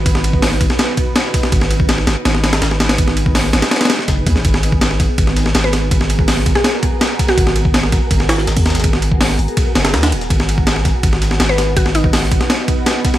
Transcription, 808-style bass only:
\new Staff \with { instrumentName = "808-style bass" } { \clef bass \time 4/4 \key b \major \tempo 4 = 164 gis,,4. gis,,16 r2 r16 | gis,,4. gis,,16 r16 gis,,4 gis,,4 | gis,,4. gis,,16 r4 r16 fis,,8 dis,16 gis,,16 | gis,,4. gis,,16 r16 gis,,4 gis,,4 |
gis,,4. gis,,16 r2 r16 | gis,,4. gis,,16 r16 gis,,4 gis,,4 | gis,,4. gis,,16 r8. fis,,8 dis,8 dis,,8 | gis,,4. gis,,16 r16 gis,,4 gis,,4 |
gis,,4. gis,,16 r2 r16 | }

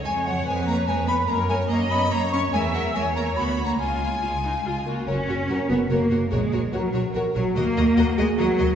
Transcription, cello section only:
\new Staff \with { instrumentName = "Cello section" } { \time 3/4 \key fis \major \tempo 4 = 145 gis8 fis8 gis8 ais8 gis8 b8 | ais8 gis8 ais8 b8 ais8 cis'8 | gis8 fis8 gis8 ais8 \tuplet 3/2 { b4 ais8 } | gis2~ gis8 ais8 |
cis'4. b8 ais4 | \tuplet 3/2 { gis4~ gis16 gis16 } fis4 r8 fis8 | ais4. gis8 fis4 | }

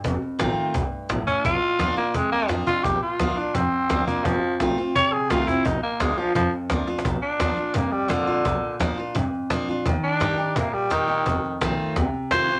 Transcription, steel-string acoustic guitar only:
\new Staff \with { instrumentName = "Steel-string acoustic guitar" } { \time 4/4 \key bes \major \tempo 4 = 171 << { r4 <ees a c' f'>4 r2 | r4 <f bes d' f'>8 <d' f'>8 r4 <f bes d' f'>8 <d' f'>8 | r4 <f bes d' f'>8 <d' f'>8 r4 <f bes d' f'>8 <d' f'>8 | r4 <ees a c' f'>8 <c' f'>8 r4 <ees a c' f'>8 <c' f'>8 |
r4 <f bes d' f'>8 <d' f'>8 r4 <f bes d' f'>8 <d' f'>8 | r4 <f bes d' f'>8 <d' f'>8 r4 <f bes d' f'>8 <d' f'>8 | r4 <f bes d' f'>8 <d' f'>8 r4 <f bes d' f'>8 <d' f'>8 | r4 <g bes ees' g'>8 <ees' g'>8 r4 <g bes ees' g'>8 <ees' g'>8 |
r4 <ees a c' f'>4 r4 <ees a c' f'>8 <c' f'>8 | } \\ { f,2 g,4 a,4 | bes,2 f,2 | bes,2 f,2 | f,2 c2 |
bes,2 f,2 | bes,2 f,2 | bes,2 f,2 | ees2 bes,2 |
f,2 c2 | } >> }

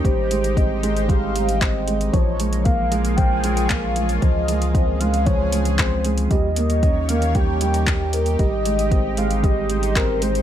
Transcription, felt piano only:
\new Staff \with { instrumentName = "Felt piano" } { \clef bass \time 4/4 \key aes \major \tempo 4 = 115 g8 aes8 c'8 aes8 g8 aes8 c'8 aes8 | f8 aes8 bes8 aes8 f8 aes8 bes8 aes8 | f8 aes8 c'8 aes8 f8 aes8 c'8 aes8 | g8 bes8 des'8 bes8 g8 g8 r8 bes'8 |
g8 aes8 c'8 aes8 g8 aes8 c'8 aes8 | }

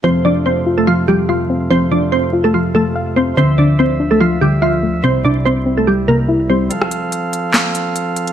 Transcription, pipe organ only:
\new Staff \with { instrumentName = "Pipe organ" } { \clef bass \time 4/4 \key f \major \tempo 4 = 144 <f, c a f'>1~ | <f, c a f'>1 | <d, d f e''>1 | <c, c g e'>1 |
<f c' a' f''>1 | }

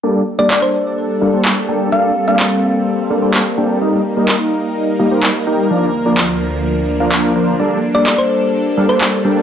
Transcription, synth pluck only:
\new Staff \with { instrumentName = "Synth pluck" } { \time 4/4 \key g \minor \tempo 4 = 127 r8. d''16 d''16 c''16 r2 r8 | f''8. f''8. r2 r8 | r1 | r1 |
r8. d''16 d''16 c''16 r4 r16 c''16 r4 | }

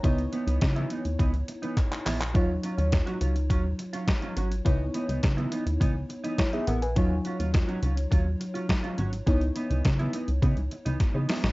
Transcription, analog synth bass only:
\new Staff \with { instrumentName = "Analog synth bass" } { \clef bass \time 4/4 \key des \dorian \tempo 4 = 104 des,8 r16 des,16 des8 r16 ees,16 des,8 r4 bes,,8 | ees,8 r16 ees,8 r16 des,8 ees,8 r4 aes,,8 | des,8 r16 des,16 des8 r16 ees,16 des,8 r4 bes,,8 | ees,8 r16 ees,8 r16 des,8 ees,8 r4 aes,,8 |
des,8 r16 des,16 des8 r16 des,16 des16 des,16 r16 des,16 r16 des16 r16 bes,,16 | }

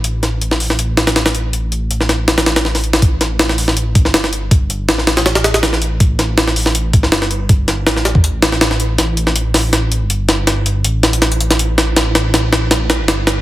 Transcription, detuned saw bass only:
\new Staff \with { instrumentName = "Detuned saw bass" } { \clef bass \time 4/4 \key g \mixolydian \tempo 4 = 161 a,,1~ | a,,1 | a,,2~ a,,8. g,,4~ g,,16~ | g,,4 a,,2. |
a,,2~ a,,8. g,,4~ g,,16~ | g,,4 a,,2. | a,,2~ a,,8. g,,4~ g,,16~ | g,,4 a,,2. |
a,,2~ a,,8. g,,4~ g,,16 | }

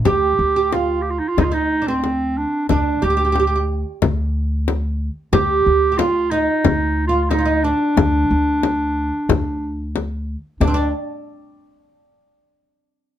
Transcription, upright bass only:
\new Staff \with { instrumentName = "Upright bass" } { \clef bass \time 4/4 \tempo 4 = 91 d,8 d,4. d,2 | d,8 d,4. d,2 | d,8 d,4. d,2 | d,8 d,4. d,2 |
d,8 r2. r8 | }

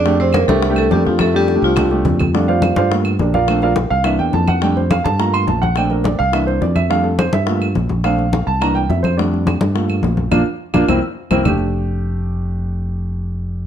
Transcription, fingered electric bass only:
\new Staff \with { instrumentName = "Fingered electric bass" } { \clef bass \time 4/4 \key f \major \tempo 4 = 210 f,4. c,4. f,4~ | f,4. c,4. f,4~ | f,4. g,4. bes,,4~ | bes,,4. c,4 e,8 f,4~ |
f,4. g,4. bes,,4~ | bes,,4. c,4. f,4~ | f,4. g,4. bes,,4~ | bes,,4. c,4. f,4~ |
f,4. g,4. bes,,4 | bes,,8 r4 bes,,8 c,8 r4 c,8 | f,,1~ | f,,1 | }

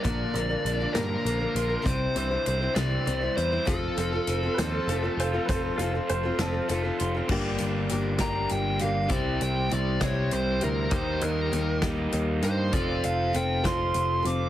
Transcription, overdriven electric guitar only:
\new Staff \with { instrumentName = "Overdriven electric guitar" } { \time 6/8 \key f \mixolydian \tempo 4. = 66 bes,8 d8 d'8 d8 bes8 f'8 | c8 e8 c'8 e8 g8 e'8 | f,8 f8 c'8 f8 a8 f'8 | f,8 f8 c'8 f8 a8 f'8 |
<g, d g bes d' g'>4. <g, d g bes d' g'>4. | <c g c' e' g'>4. <c g c' e' g'>4. | <ees g bes ees' g'>4. <ees g bes ees' g'>4. | <f c' f' a'>4. <f c' f' a'>4. | }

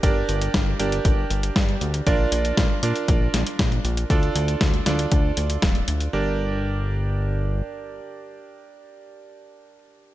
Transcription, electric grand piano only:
\new Staff \with { instrumentName = "Electric grand piano" } { \time 4/4 \key g \minor \tempo 4 = 118 <d' g' bes' d''>4. <d' g' bes' d''>2~ <d' g' bes' d''>8 | <d' f' bes' d''>4. <d' f' bes' d''>2~ <d' f' bes' d''>8 | <d' f' a' d''>4. <d' f' a' d''>2~ <d' f' a' d''>8 | <d' g' bes' d''>1~ |
<d' g' bes' d''>1 | }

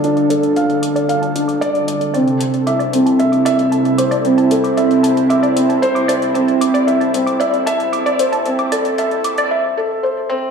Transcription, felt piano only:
\new Staff \with { instrumentName = "Felt piano" } { \time 4/4 \key a \phrygian \tempo 4 = 114 d'8 a'8 f''8 r8 f''8 d'8 d''8 d''8 | c'8 r8 e''8 c'8 e''8 e''8 r8 c''8 | c'8 a'8 e''8 r8 e''8 c'8 c''8 c''8 | c'8 r8 e''8 c'8 e''8 e''8 r8 c''8 |
c'8 a'8 e''8 r8 e''8 a'8 c''8 c'8 | }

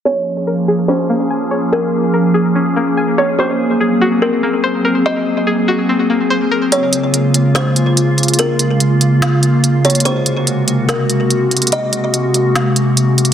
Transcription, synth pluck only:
\new Staff \with { instrumentName = "Synth pluck" } { \time 4/4 \key bes \minor \tempo 4 = 144 aes''4 bes'8 aes'8 des'8 bes8 aes''8 des''8 | aes''4 bes'8 aes'8 des'8 bes8 aes''8 des''8 | c''4 aes'8 ges'8 c'8 bes8 c''8 bes'8 | c''4 aes'8 ges'8 c'8 bes8 c''8 bes'8 |
r1 | r1 | r1 | r1 | }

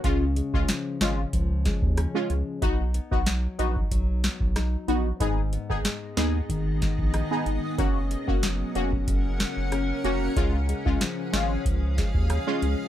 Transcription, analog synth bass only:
\new Staff \with { instrumentName = "Analog synth bass" } { \clef bass \time 4/4 \key cis \mixolydian \tempo 4 = 93 cis,8. cis,16 r8 gis,,8 cis,8. dis,8 r16 cis,16 r16 | b,,8. b,,8. ais,,8 b,,8. b,,8. ais,,8 | gis,,8. gis,,16 r8 dis,8 gis,,8. ais,,8 r16 gis,,16 r16 | fis,,8. fis,,8. eis,,8 fis,,8. fis,,8. eis,,8 |
cis,8. cis,16 r8 gis,,8 cis,8. dis,8 r16 cis,16 r16 | }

